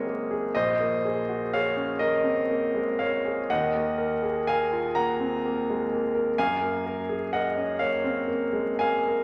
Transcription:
Already playing: F#1 G#3 A#3 C4 C#4 F#4 G#4 A#4 C5 C#5 D#5
0.07 A#3
0.31 G#4
0.55 A#1 C5 D#5
0.80 A#3
1.05 G#4
1.29 F#4
1.53 G#4 C#5 F5
1.77 C#4
1.99 A#3 A#4 D#5
2.24 C4
2.50 A#3
2.74 G#3
2.99 A#3 C#5 F5
3.25 G#4
3.50 D#2 D#5 F#5
3.75 A#3
3.98 A#4
4.23 G#4
4.47 A#4 F5 G#5
4.73 F4
4.95 A#3 F#5 A#5
5.20 C4
5.45 A#3
5.70 G#3
5.92 A#3
6.14 A#4
6.38 F#2 F5 G#5
6.61 A#3
6.86 A#4
7.09 G#4
7.33 A#4 D#5 F#5
7.57 C#4
7.79 A#3 C#5 F5
8.04 C4
8.28 A#3
8.53 G#3
8.79 A#3 F5 G#5
9.08 A#4

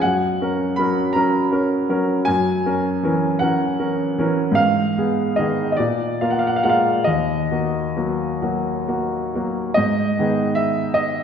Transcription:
0.01 F#2 F#5
0.41 C#4 A#4
0.76 F#3 C#4 A#4 B5
1.13 F#3 C#4 A#4 A#5
1.52 C#4 A#4
1.89 F#3 C#4 A#4
2.25 F#2 G#5
2.66 C#4 A#4
3.03 E3 C#4 A#4
3.39 E3 C#4 A#4 F#5
3.79 C#4 A#4
4.18 E3 C#4 A#4
4.51 G#2 F5
4.98 B3 G#4
5.36 D#3 B3 G#4 D#5
5.72 D#5
5.77 A#2 D5
6.21 A#3 F4 F5
6.30 F#5
6.39 F5
6.47 F#5
6.56 F5
6.63 G#3 A#3 F4 F#5
6.69 F5
7.04 D#2 D#5
7.52 A#3 F#4
7.96 F#3 A#3 F#4
8.42 F#3 A#3 F#4
8.88 A#3 F#4
9.35 F#3 A#3 F#4
9.74 G#2 D#5
10.19 D#3 B3 G#4
10.55 E5
10.94 D#5

